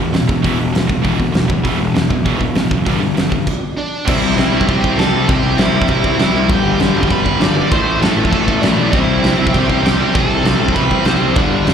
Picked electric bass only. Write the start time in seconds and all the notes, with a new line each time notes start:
0.00 E1
0.14 E1
0.29 E1
0.45 E1
0.59 E1
0.74 E1
1.05 E1
1.19 D2
1.34 E1
1.50 E2
1.65 E1
1.81 E1
1.95 E1
2.25 E1
2.41 E1
2.56 E1
2.72 F#1
2.87 G1
3.02 G1
3.17 G1
4.08 C2
4.22 C2
4.37 C2
4.52 C2
4.69 C2
4.84 C2
4.97 C2
5.29 C2
5.43 C2
5.58 C2
5.73 C2
5.89 C2
6.05 C2
6.20 C2
6.33 C2
6.50 G1
6.64 G1
6.79 G1
6.95 G1
7.11 G1
7.26 G1
7.40 G1
7.72 A1
7.87 A1
8.02 A1
8.17 A1
8.33 A1
8.48 A1
8.63 A1
8.77 B1
8.93 C2
9.07 C2
9.21 C2
9.37 C2
9.55 C2
9.70 C2
9.82 C2
10.15 C2
10.28 C2
10.44 C2
10.60 C2
10.76 C2
10.91 C2
11.06 C2
11.22 C2
11.36 G1
11.51 G1
11.65 G1